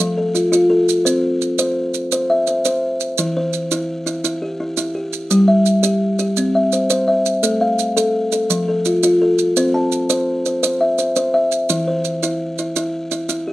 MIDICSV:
0, 0, Header, 1, 3, 480
1, 0, Start_track
1, 0, Tempo, 354400
1, 1430, Time_signature, 12, 3, 24, 8
1, 18324, End_track
2, 0, Start_track
2, 0, Title_t, "Kalimba"
2, 0, Program_c, 0, 108
2, 0, Note_on_c, 0, 53, 84
2, 0, Note_on_c, 0, 69, 66
2, 221, Note_off_c, 0, 69, 0
2, 238, Note_on_c, 0, 69, 69
2, 468, Note_on_c, 0, 65, 63
2, 475, Note_off_c, 0, 53, 0
2, 688, Note_off_c, 0, 65, 0
2, 704, Note_on_c, 0, 65, 92
2, 928, Note_off_c, 0, 69, 0
2, 944, Note_on_c, 0, 69, 70
2, 1187, Note_off_c, 0, 65, 0
2, 1424, Note_on_c, 0, 72, 75
2, 1425, Note_on_c, 0, 60, 80
2, 1666, Note_off_c, 0, 69, 0
2, 1907, Note_off_c, 0, 60, 0
2, 2134, Note_off_c, 0, 72, 0
2, 2151, Note_on_c, 0, 72, 90
2, 2629, Note_off_c, 0, 72, 0
2, 2878, Note_on_c, 0, 72, 82
2, 3113, Note_on_c, 0, 76, 72
2, 3341, Note_off_c, 0, 72, 0
2, 3357, Note_on_c, 0, 72, 68
2, 3580, Note_off_c, 0, 72, 0
2, 3597, Note_on_c, 0, 72, 87
2, 3830, Note_off_c, 0, 76, 0
2, 4071, Note_off_c, 0, 72, 0
2, 4314, Note_on_c, 0, 52, 85
2, 4317, Note_on_c, 0, 64, 68
2, 4560, Note_on_c, 0, 72, 72
2, 4790, Note_off_c, 0, 52, 0
2, 5014, Note_off_c, 0, 64, 0
2, 5031, Note_on_c, 0, 64, 87
2, 5273, Note_off_c, 0, 72, 0
2, 5486, Note_off_c, 0, 64, 0
2, 5502, Note_on_c, 0, 64, 71
2, 5729, Note_off_c, 0, 64, 0
2, 5745, Note_on_c, 0, 64, 84
2, 5986, Note_on_c, 0, 67, 62
2, 6216, Note_off_c, 0, 64, 0
2, 6232, Note_on_c, 0, 64, 65
2, 6450, Note_off_c, 0, 64, 0
2, 6466, Note_on_c, 0, 64, 80
2, 6685, Note_off_c, 0, 67, 0
2, 6701, Note_on_c, 0, 67, 60
2, 6946, Note_off_c, 0, 64, 0
2, 7173, Note_off_c, 0, 67, 0
2, 7186, Note_on_c, 0, 55, 84
2, 7189, Note_on_c, 0, 67, 67
2, 7420, Note_on_c, 0, 76, 67
2, 7667, Note_off_c, 0, 55, 0
2, 7880, Note_off_c, 0, 67, 0
2, 7896, Note_on_c, 0, 67, 86
2, 8144, Note_off_c, 0, 76, 0
2, 8366, Note_off_c, 0, 67, 0
2, 8383, Note_on_c, 0, 67, 72
2, 8628, Note_on_c, 0, 60, 84
2, 8866, Note_off_c, 0, 67, 0
2, 8872, Note_on_c, 0, 76, 64
2, 9108, Note_off_c, 0, 60, 0
2, 9115, Note_on_c, 0, 72, 69
2, 9332, Note_off_c, 0, 72, 0
2, 9348, Note_on_c, 0, 72, 93
2, 9569, Note_off_c, 0, 76, 0
2, 9585, Note_on_c, 0, 76, 72
2, 9829, Note_off_c, 0, 72, 0
2, 10062, Note_on_c, 0, 69, 67
2, 10064, Note_on_c, 0, 57, 89
2, 10308, Note_off_c, 0, 76, 0
2, 10308, Note_on_c, 0, 77, 70
2, 10547, Note_off_c, 0, 57, 0
2, 10774, Note_off_c, 0, 69, 0
2, 10790, Note_on_c, 0, 69, 93
2, 11030, Note_off_c, 0, 77, 0
2, 11258, Note_off_c, 0, 69, 0
2, 11275, Note_on_c, 0, 69, 67
2, 11513, Note_on_c, 0, 53, 89
2, 11744, Note_off_c, 0, 69, 0
2, 11760, Note_on_c, 0, 69, 70
2, 11992, Note_off_c, 0, 53, 0
2, 11996, Note_on_c, 0, 65, 64
2, 12219, Note_off_c, 0, 65, 0
2, 12235, Note_on_c, 0, 65, 86
2, 12466, Note_off_c, 0, 69, 0
2, 12483, Note_on_c, 0, 69, 71
2, 12714, Note_off_c, 0, 65, 0
2, 12959, Note_on_c, 0, 60, 88
2, 12960, Note_on_c, 0, 72, 80
2, 13196, Note_on_c, 0, 81, 75
2, 13198, Note_off_c, 0, 69, 0
2, 13436, Note_off_c, 0, 60, 0
2, 13659, Note_off_c, 0, 72, 0
2, 13676, Note_on_c, 0, 72, 92
2, 13915, Note_off_c, 0, 81, 0
2, 14149, Note_off_c, 0, 72, 0
2, 14165, Note_on_c, 0, 72, 65
2, 14382, Note_off_c, 0, 72, 0
2, 14398, Note_on_c, 0, 72, 90
2, 14636, Note_on_c, 0, 76, 67
2, 14863, Note_off_c, 0, 72, 0
2, 14879, Note_on_c, 0, 72, 68
2, 15104, Note_off_c, 0, 72, 0
2, 15121, Note_on_c, 0, 72, 90
2, 15343, Note_off_c, 0, 76, 0
2, 15359, Note_on_c, 0, 76, 69
2, 15597, Note_off_c, 0, 72, 0
2, 15841, Note_on_c, 0, 64, 75
2, 15842, Note_on_c, 0, 52, 82
2, 16077, Note_off_c, 0, 76, 0
2, 16082, Note_on_c, 0, 72, 67
2, 16318, Note_off_c, 0, 52, 0
2, 16545, Note_off_c, 0, 64, 0
2, 16561, Note_on_c, 0, 64, 85
2, 16799, Note_off_c, 0, 72, 0
2, 17033, Note_off_c, 0, 64, 0
2, 17049, Note_on_c, 0, 64, 67
2, 17270, Note_off_c, 0, 64, 0
2, 17287, Note_on_c, 0, 64, 91
2, 17747, Note_off_c, 0, 64, 0
2, 17763, Note_on_c, 0, 64, 69
2, 17984, Note_off_c, 0, 64, 0
2, 18001, Note_on_c, 0, 64, 78
2, 18249, Note_on_c, 0, 67, 66
2, 18324, Note_off_c, 0, 64, 0
2, 18324, Note_off_c, 0, 67, 0
2, 18324, End_track
3, 0, Start_track
3, 0, Title_t, "Drums"
3, 0, Note_on_c, 9, 70, 78
3, 129, Note_off_c, 9, 70, 0
3, 475, Note_on_c, 9, 70, 58
3, 611, Note_off_c, 9, 70, 0
3, 717, Note_on_c, 9, 70, 70
3, 853, Note_off_c, 9, 70, 0
3, 1201, Note_on_c, 9, 70, 66
3, 1336, Note_off_c, 9, 70, 0
3, 1441, Note_on_c, 9, 70, 75
3, 1577, Note_off_c, 9, 70, 0
3, 1917, Note_on_c, 9, 70, 60
3, 2053, Note_off_c, 9, 70, 0
3, 2147, Note_on_c, 9, 70, 78
3, 2282, Note_off_c, 9, 70, 0
3, 2628, Note_on_c, 9, 70, 57
3, 2763, Note_off_c, 9, 70, 0
3, 2867, Note_on_c, 9, 70, 79
3, 3003, Note_off_c, 9, 70, 0
3, 3345, Note_on_c, 9, 70, 60
3, 3481, Note_off_c, 9, 70, 0
3, 3588, Note_on_c, 9, 70, 72
3, 3723, Note_off_c, 9, 70, 0
3, 4069, Note_on_c, 9, 70, 59
3, 4204, Note_off_c, 9, 70, 0
3, 4305, Note_on_c, 9, 70, 78
3, 4440, Note_off_c, 9, 70, 0
3, 4784, Note_on_c, 9, 70, 54
3, 4919, Note_off_c, 9, 70, 0
3, 5028, Note_on_c, 9, 70, 72
3, 5164, Note_off_c, 9, 70, 0
3, 5510, Note_on_c, 9, 70, 61
3, 5645, Note_off_c, 9, 70, 0
3, 5750, Note_on_c, 9, 70, 70
3, 5886, Note_off_c, 9, 70, 0
3, 6461, Note_on_c, 9, 70, 63
3, 6596, Note_off_c, 9, 70, 0
3, 6946, Note_on_c, 9, 70, 60
3, 7081, Note_off_c, 9, 70, 0
3, 7187, Note_on_c, 9, 70, 74
3, 7322, Note_off_c, 9, 70, 0
3, 7661, Note_on_c, 9, 70, 56
3, 7797, Note_off_c, 9, 70, 0
3, 7901, Note_on_c, 9, 70, 74
3, 8036, Note_off_c, 9, 70, 0
3, 8383, Note_on_c, 9, 70, 57
3, 8519, Note_off_c, 9, 70, 0
3, 8623, Note_on_c, 9, 70, 83
3, 8758, Note_off_c, 9, 70, 0
3, 9105, Note_on_c, 9, 70, 63
3, 9240, Note_off_c, 9, 70, 0
3, 9345, Note_on_c, 9, 70, 75
3, 9480, Note_off_c, 9, 70, 0
3, 9830, Note_on_c, 9, 70, 67
3, 9965, Note_off_c, 9, 70, 0
3, 10067, Note_on_c, 9, 70, 82
3, 10202, Note_off_c, 9, 70, 0
3, 10547, Note_on_c, 9, 70, 66
3, 10683, Note_off_c, 9, 70, 0
3, 10798, Note_on_c, 9, 70, 81
3, 10933, Note_off_c, 9, 70, 0
3, 11270, Note_on_c, 9, 70, 68
3, 11405, Note_off_c, 9, 70, 0
3, 11514, Note_on_c, 9, 70, 80
3, 11650, Note_off_c, 9, 70, 0
3, 11989, Note_on_c, 9, 70, 63
3, 12124, Note_off_c, 9, 70, 0
3, 12233, Note_on_c, 9, 70, 75
3, 12368, Note_off_c, 9, 70, 0
3, 12711, Note_on_c, 9, 70, 58
3, 12847, Note_off_c, 9, 70, 0
3, 12956, Note_on_c, 9, 70, 75
3, 13092, Note_off_c, 9, 70, 0
3, 13434, Note_on_c, 9, 70, 58
3, 13570, Note_off_c, 9, 70, 0
3, 13675, Note_on_c, 9, 70, 79
3, 13811, Note_off_c, 9, 70, 0
3, 14161, Note_on_c, 9, 70, 62
3, 14297, Note_off_c, 9, 70, 0
3, 14401, Note_on_c, 9, 70, 81
3, 14536, Note_off_c, 9, 70, 0
3, 14875, Note_on_c, 9, 70, 58
3, 15011, Note_off_c, 9, 70, 0
3, 15115, Note_on_c, 9, 70, 66
3, 15251, Note_off_c, 9, 70, 0
3, 15597, Note_on_c, 9, 70, 60
3, 15733, Note_off_c, 9, 70, 0
3, 15838, Note_on_c, 9, 70, 77
3, 15973, Note_off_c, 9, 70, 0
3, 16315, Note_on_c, 9, 70, 55
3, 16450, Note_off_c, 9, 70, 0
3, 16563, Note_on_c, 9, 70, 73
3, 16698, Note_off_c, 9, 70, 0
3, 17043, Note_on_c, 9, 70, 58
3, 17179, Note_off_c, 9, 70, 0
3, 17283, Note_on_c, 9, 70, 74
3, 17418, Note_off_c, 9, 70, 0
3, 17761, Note_on_c, 9, 70, 53
3, 17896, Note_off_c, 9, 70, 0
3, 18001, Note_on_c, 9, 70, 62
3, 18137, Note_off_c, 9, 70, 0
3, 18324, End_track
0, 0, End_of_file